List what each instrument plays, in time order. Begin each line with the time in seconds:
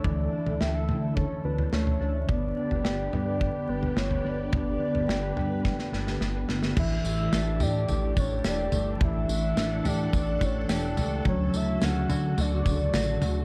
Already playing: string machine D3 A3 E4 A4, clean electric guitar A3 D4 A4
0.04 analog synth bass D2, clean electric guitar E3, soft synth lead D5, kick, floor tom
0.33 clean electric guitar D4
0.47 analog synth bass D2, floor tom
0.60 analog synth bass D2, clean electric guitar G4, soft synth lead E5, snare
0.75 clean electric guitar A4
0.88 analog synth bass D3, clean electric guitar A3, floor tom
1.15 clean electric guitar A4, soft synth lead C#5, kick, floor tom
1.45 analog synth bass D2, clean electric guitar D4, soft synth lead B4
1.58 floor tom
1.73 analog synth bass D2, clean electric guitar A3, soft synth lead C#5, snare
1.87 floor tom
2.01 analog synth bass D2, clean electric guitar D4
2.29 analog synth bass G1, string machine D3 B3 G4 B4, clean electric guitar B3, soft synth lead D5, kick, floor tom
2.57 clean electric guitar D4
2.71 analog synth bass G1, floor tom
2.84 analog synth bass G1, clean electric guitar G4, snare
3.12 analog synth bass G2, clean electric guitar B3, soft synth lead D5, floor tom
3.40 clean electric guitar G4, kick
3.68 analog synth bass G1, clean electric guitar D4, soft synth lead B4
3.83 floor tom
3.96 analog synth bass G1, clean electric guitar B3, soft synth lead C#5, snare
4.11 floor tom
4.24 analog synth bass G1, clean electric guitar D4, soft synth lead D5
4.52 analog synth bass G1, clean electric guitar B3, kick, floor tom
4.80 clean electric guitar D4
4.95 analog synth bass G1, floor tom
5.08 analog synth bass G1, clean electric guitar G4, snare
5.37 analog synth bass G2, clean electric guitar B3, floor tom
5.64 clean electric guitar G4, kick, snare
5.79 snare
5.92 analog synth bass G1, clean electric guitar D4, snare
6.07 snare
6.20 analog synth bass G1, clean electric guitar B3, snare
6.48 analog synth bass G1, clean electric guitar D4, snare
6.63 snare
6.75 analog synth bass A1, string machine E3 D4 G4 A4, clean electric guitar E3, soft synth lead E5, kick, floor tom, crash
7.04 analog synth bass A1, clean electric guitar A3, tambourine
7.32 analog synth bass A1, clean electric guitar D4, snare, tambourine
7.60 analog synth bass A2, clean electric guitar G4, soft synth lead D5, floor tom, tambourine
7.88 analog synth bass A1, clean electric guitar A3, floor tom, tambourine
8.17 analog synth bass A1, clean electric guitar D4, soft synth lead C#5, kick, tambourine
8.44 analog synth bass E1, clean electric guitar G4, soft synth lead D5, snare, tambourine
8.72 analog synth bass G1, clean electric guitar A3, floor tom, tambourine
9.00 analog synth bass A1, clean electric guitar E3, string machine F#5, kick, floor tom
9.05 soft synth lead E5
9.29 analog synth bass A1, clean electric guitar A3, tambourine
9.56 analog synth bass A1, clean electric guitar D4, snare, tambourine
9.84 analog synth bass A2, clean electric guitar G4, soft synth lead D5, floor tom, tambourine
10.13 analog synth bass A1, clean electric guitar A3, kick, floor tom, tambourine
10.41 analog synth bass A1, clean electric guitar D4, soft synth lead C#5, kick, tambourine
10.69 analog synth bass E1, clean electric guitar G4, snare, tambourine
10.73 soft synth lead D5
10.97 analog synth bass C#2, clean electric guitar A3, floor tom, tambourine
11.25 analog synth bass D2, string machine C#3 D3 F#4, clean electric guitar F#3, soft synth lead C#5, kick, floor tom
11.53 analog synth bass D2, clean electric guitar A3, soft synth lead E5, tambourine
11.81 analog synth bass D2, clean electric guitar C#4, soft synth lead F#5, snare, tambourine
12.09 analog synth bass D3, clean electric guitar F#4, floor tom, tambourine
12.37 analog synth bass D2, clean electric guitar A3, soft synth lead D5, floor tom, tambourine
12.66 analog synth bass D2, kick, tambourine
12.94 analog synth bass A1, clean electric guitar F#4, snare, tambourine
13.22 analog synth bass D2, clean electric guitar A3, floor tom, tambourine